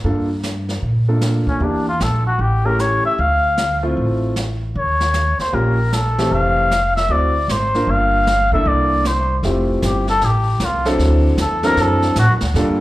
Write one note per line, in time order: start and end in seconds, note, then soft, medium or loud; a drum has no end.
0.04 0.79 G2 medium
0.04 0.27 A#3 medium
0.04 0.28 D4 soft
0.04 0.28 F4 soft
0.04 0.27 A4 medium
0.04 brush sweep soft
0.43 snare soft
0.43 hi-hat pedal soft
0.69 snare soft
0.82 1.43 A#2 medium
0.82 brush sweep soft
1.08 1.58 A#3 medium
1.08 1.59 D4 soft
1.08 1.59 F4 soft
1.08 1.59 A4 medium
1.21 snare soft
1.21 hi-hat pedal medium
1.47 1.65 C#4 medium
1.47 muted upright bass stroke soft
1.47 kick soft
1.60 1.97 E2 medium
1.60 1.84 A#3 soft
1.60 1.84 D4 soft
1.60 1.88 D4 medium
1.60 1.84 E4 soft
1.60 1.84 G4 medium
1.60 brush sweep soft
1.89 2.04 F4 medium
2.00 2.37 A#1 medium
2.00 2.26 A4 medium
2.00 snare medium
2.00 hi-hat pedal medium
2.27 2.43 F#4 medium
2.39 3.00 A1 medium
2.39 2.67 G4 medium
2.39 brush sweep soft
2.65 3.15 A3 medium
2.65 3.15 C#4 medium
2.65 3.15 E4 medium
2.65 3.15 G4 medium
2.65 2.82 A#4 medium
2.79 3.05 C#5 medium
2.79 snare soft
2.79 hi-hat pedal soft
3.03 3.22 E5 medium
3.03 muted upright bass stroke soft
3.18 3.93 D2 medium
3.18 3.84 F5 medium
3.18 brush sweep soft
3.57 snare medium
3.57 hi-hat pedal medium
3.83 4.33 A3 medium
3.83 4.33 C4 medium
3.83 4.33 E4 medium
3.83 4.33 F4 medium
3.97 4.71 A1 medium
3.97 brush sweep soft
4.36 snare medium
4.36 hi-hat pedal soft
4.75 5.35 D#2 medium
4.75 5.37 C#5 medium
4.75 brush sweep soft
5.01 snare soft
5.13 snare medium
5.13 hi-hat pedal medium
5.39 5.56 C5 medium
5.39 muted upright bass stroke soft
5.39 snare soft
5.52 6.27 A#1 medium
5.52 5.75 A#3 medium
5.52 5.76 C#4 medium
5.52 5.75 F4 medium
5.52 5.76 G4 medium
5.52 5.95 A#4 medium
5.52 brush sweep soft
5.92 6.35 A4 medium
5.92 snare medium
5.92 hi-hat pedal soft
6.18 6.68 E3 medium
6.18 6.68 A3 medium
6.18 6.68 C4 medium
6.18 6.68 G4 medium
6.18 snare soft
6.31 7.05 F1 medium
6.31 6.96 F5 medium
6.31 brush sweep soft
6.71 snare medium
6.71 hi-hat pedal medium
6.96 7.13 E5 medium
6.96 snare soft
7.09 7.45 D2 medium
7.09 7.32 A3 medium
7.09 7.32 C4 soft
7.09 7.33 E4 soft
7.09 7.32 F#4 medium
7.09 7.52 D5 medium
7.09 brush sweep soft
7.48 7.84 G#1 medium
7.48 7.92 C5 medium
7.48 snare medium
7.48 hi-hat pedal medium
7.74 8.24 A#3 medium
7.74 8.24 D4 medium
7.74 8.24 F4 soft
7.74 8.24 A#4 medium
7.74 snare soft
7.87 8.61 G1 medium
7.87 8.53 F5 loud
7.87 brush sweep soft
8.27 snare medium
8.27 hi-hat pedal soft
8.52 9.02 A#3 medium
8.52 9.03 D4 medium
8.52 9.03 E4 medium
8.52 9.03 A4 medium
8.52 8.69 E5 medium
8.52 kick medium
8.65 9.40 C2 medium
8.65 9.08 D5 medium
8.65 brush sweep soft
9.05 9.38 C5 medium
9.05 snare medium
9.05 hi-hat pedal soft
9.43 9.81 F1 medium
9.43 10.03 A3 medium
9.43 10.03 C4 medium
9.43 10.03 E4 medium
9.43 10.03 F4 medium
9.43 10.03 G4 medium
9.43 brush sweep soft
9.43 snare soft
9.82 10.20 G1 medium
9.82 10.08 G4 medium
9.82 snare medium
9.82 hi-hat pedal medium
10.07 10.27 A4 loud
10.07 snare soft
10.21 10.59 A1 medium
10.21 10.66 G4 medium
10.21 brush sweep medium
10.21 snare soft
10.60 10.98 C2 medium
10.60 snare medium
10.60 hi-hat pedal medium
10.65 10.88 F4 medium
10.85 11.36 F#3 medium
10.85 11.36 C4 medium
10.85 11.36 D4 medium
10.85 11.36 E4 medium
10.85 11.36 A4 medium
10.85 snare soft
10.98 11.37 D2 medium
10.98 brush sweep soft
10.98 snare soft
11.37 11.76 E2 medium
11.37 snare medium
11.37 hi-hat pedal medium
11.41 11.67 A4 medium
11.63 12.13 F#3 medium
11.63 12.14 C4 medium
11.63 12.14 D4 medium
11.63 12.14 E4 medium
11.63 12.14 A4 medium
11.63 11.83 A#4 loud
11.63 snare soft
11.77 12.15 F#2 medium
11.77 brush sweep medium
11.77 snare soft
11.81 12.18 A4 medium
12.02 snare soft
12.16 12.29 A2 medium
12.16 12.33 F#4 medium
12.16 snare medium
12.16 hi-hat pedal medium
12.29 12.41 F#2 medium
12.41 12.54 D2 medium
12.41 snare medium
12.54 12.80 G2 medium
12.54 12.78 G3 medium
12.54 12.78 A#3 medium
12.54 12.78 D4 medium
12.54 12.78 F4 medium
12.54 12.78 A4 medium
12.54 brush sweep soft
12.54 snare soft